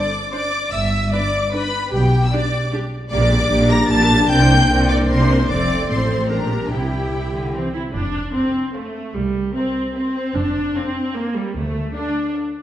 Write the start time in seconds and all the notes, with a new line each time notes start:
Already playing: D5 D6
0.31 C4 D4 C5 D5 D6
0.72 G1 G2 E5 E6
1.12 B3 D4 B4 D5 D6
1.52 B3 D4 B4 B5
1.92 B1 B2 G4 G5
2.26 E6
2.32 G3 D4 G4 D5 D6
2.72 G3 D4 G4
3.11 A#1 A#2 G3 A#3 D4 G4 D5 D6
3.21 D4 A#4
3.31 A#3 G4
3.41 D4 A#4
3.51 A#1 A#2 A#3 G4
3.61 D4 A#4
3.70 A#3 G4 A#5 A#6
3.81 D4 A#4
3.89 A#1 A#2 A#3 G4 A5 A6
4.01 D4 A#4
4.11 A#3 G4
4.22 D4 A#4
4.29 C2 C3 A#3 C4 A#4 G5 G6
4.42 D4 C5
4.51 C4 A#4
4.61 D4 C5
4.70 C2 C3 C4 A#4
4.81 D4 C5
4.89 C4 A#4 D5 D6
5.01 D4 C5
5.09 C2 C3 C4 A#4 C5 C6
5.21 D4 C5
5.31 C4 A#4
5.40 D4 C5
5.49 F1 F2 A3 C4 A4 D5 D6
5.89 A1 A2 A3 C4 A4 C5 C6
6.29 A#1 A#2 G3 D4 G4 A#4 A#5
6.71 C2 C3 G3 E4 G4 G5
7.12 C3
7.32 D3
7.53 E3 C4
7.73 C3 E4
7.93 F1 F2 D4
8.33 C4 A4 C5 F5
8.74 A3 A4 C5 F5
9.14 C2 G3
9.55 C4 A#4 C5 E5
9.96 C4 A#4 C5 E5
10.36 F1 F2 D4
10.75 C4 A4 C5 F5
11.15 A#3 A4 C5 F5
11.36 G3
11.55 D2 A3
11.95 D4 A4 D5 F5
12.34 A4 D5 F5